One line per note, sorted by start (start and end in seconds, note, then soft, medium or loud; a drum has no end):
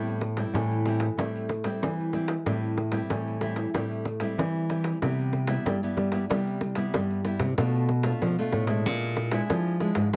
0.00 0.44 A2 medium
0.00 0.52 A2 medium
0.00 0.21 G3 medium
0.00 0.21 C4 medium
0.00 0.21 E4 medium
0.08 pandeiro soft
0.21 pandeiro medium
0.37 0.81 G3 soft
0.37 0.81 C4 medium
0.37 0.81 E4 medium
0.37 pandeiro medium
0.54 1.08 A2 loud
0.54 1.16 E3 medium
0.54 pandeiro medium
0.72 pandeiro soft
0.85 1.05 G3 medium
0.85 1.05 C4 medium
0.85 1.06 E4 medium
0.85 pandeiro medium
1.00 pandeiro medium
1.18 1.79 A2 medium
1.18 1.49 G3 soft
1.18 1.72 A3 medium
1.18 1.49 C4 medium
1.18 1.49 E4 medium
1.18 pandeiro medium
1.36 pandeiro soft
1.49 pandeiro medium
1.64 2.08 G3 medium
1.64 2.08 C4 medium
1.64 2.09 E4 medium
1.64 pandeiro medium
1.82 2.37 E3 medium
1.82 2.44 E3 medium
1.82 pandeiro medium
2.00 pandeiro soft
2.13 2.33 G3 soft
2.13 2.33 C4 medium
2.13 2.33 E4 medium
2.13 pandeiro medium
2.28 pandeiro medium
2.46 3.01 A2 medium
2.46 3.08 A2 soft
2.46 2.77 G3 medium
2.46 2.77 C4 medium
2.46 2.77 E4 medium
2.46 pandeiro medium
2.64 pandeiro soft
2.77 pandeiro medium
2.92 3.36 G3 medium
2.92 3.36 C4 medium
2.92 3.36 E4 medium
2.92 pandeiro medium
3.10 3.65 A2 medium
3.10 3.72 E3 medium
3.10 pandeiro medium
3.27 pandeiro soft
3.41 3.69 G3 medium
3.41 3.69 C4 medium
3.41 3.69 E4 medium
3.41 pandeiro medium
3.56 pandeiro medium
3.74 4.35 A2 medium
3.74 4.04 G3 medium
3.74 4.28 A3 medium
3.74 4.05 C4 medium
3.74 4.05 E4 medium
3.74 pandeiro medium
3.91 pandeiro soft
4.05 pandeiro medium
4.20 4.64 G3 medium
4.20 4.64 C4 medium
4.20 4.65 E4 medium
4.20 pandeiro medium
4.38 4.93 E3 medium
4.38 4.99 E3 medium
4.38 pandeiro medium
4.56 pandeiro soft
4.69 4.97 G3 medium
4.69 4.97 C4 medium
4.69 4.97 E4 medium
4.69 pandeiro medium
4.84 pandeiro medium
5.02 5.63 C3 medium
5.02 5.57 C3 medium
5.02 5.45 G3 medium
5.02 5.45 B3 medium
5.02 5.45 E4 medium
5.02 pandeiro medium
5.19 pandeiro soft
5.33 pandeiro medium
5.47 5.76 G3 medium
5.47 5.76 B3 medium
5.47 5.76 E4 medium
5.47 pandeiro medium
5.66 6.27 G2 medium
5.66 5.80 G3 loud
5.66 pandeiro medium
5.83 6.09 G3 medium
5.83 6.10 B3 medium
5.83 6.10 E4 medium
5.83 pandeiro soft
5.97 6.24 G3 medium
5.97 pandeiro medium
6.12 6.24 G3 medium
6.12 6.24 B3 medium
6.12 6.24 E4 medium
6.12 pandeiro medium
6.30 6.91 C3 medium
6.30 6.60 G3 medium
6.30 6.84 G3 medium
6.30 6.60 B3 medium
6.30 6.60 E4 medium
6.30 pandeiro medium
6.47 pandeiro soft
6.61 pandeiro medium
6.75 7.20 G3 medium
6.75 7.20 B3 medium
6.75 7.20 E4 medium
6.75 pandeiro medium
6.94 7.55 G2 medium
6.94 7.35 G3 medium
6.94 pandeiro medium
7.11 pandeiro soft
7.25 7.44 G3 medium
7.25 7.44 B3 soft
7.25 7.45 E4 medium
7.25 pandeiro medium
7.40 7.54 C3 medium
7.40 pandeiro medium
7.58 8.19 B2 medium
7.58 8.12 B2 medium
7.58 7.88 A3 medium
7.58 7.88 D4 medium
7.58 7.88 F4 medium
7.58 pandeiro medium
7.75 pandeiro soft
7.89 pandeiro medium
8.03 8.31 A3 medium
8.03 8.32 D4 medium
8.03 8.32 F4 medium
8.03 pandeiro medium
8.22 8.83 B2 medium
8.22 8.36 F3 loud
8.22 pandeiro medium
8.38 8.65 A3 medium
8.38 8.65 D4 medium
8.38 8.66 F4 medium
8.38 pandeiro soft
8.52 8.86 A2 medium
8.52 pandeiro medium
8.67 9.27 G#3 medium
8.67 9.28 D4 medium
8.67 9.28 E4 medium
8.67 pandeiro medium
8.86 9.40 A#2 loud
8.86 9.47 A#2 medium
8.86 pandeiro medium
9.03 pandeiro soft
9.17 pandeiro medium
9.31 9.76 G#3 medium
9.31 9.76 D4 medium
9.31 9.76 E4 medium
9.31 pandeiro medium
9.50 9.91 F3 medium
9.50 10.11 F3 medium
9.50 pandeiro medium
9.67 pandeiro soft
9.80 10.08 G#3 medium
9.80 10.08 D4 medium
9.80 10.08 E4 medium
9.80 pandeiro medium
9.95 10.10 G#2 medium
9.95 pandeiro medium